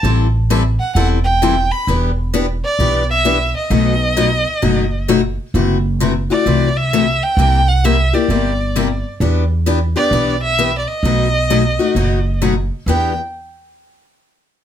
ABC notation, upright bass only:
X:1
M:4/4
L:1/8
Q:"Swing" 1/4=131
K:Em
V:1 name="Upright bass" clef=bass
A,,,4 E,,,4 | E,,,4 B,,,4 | B,,,4 F,,,4 | F,,,4 C,,4 |
C,,4 G,,,4 | E,,4 B,,,4 | B,,,4 F,,,4 | E,, z6 z |]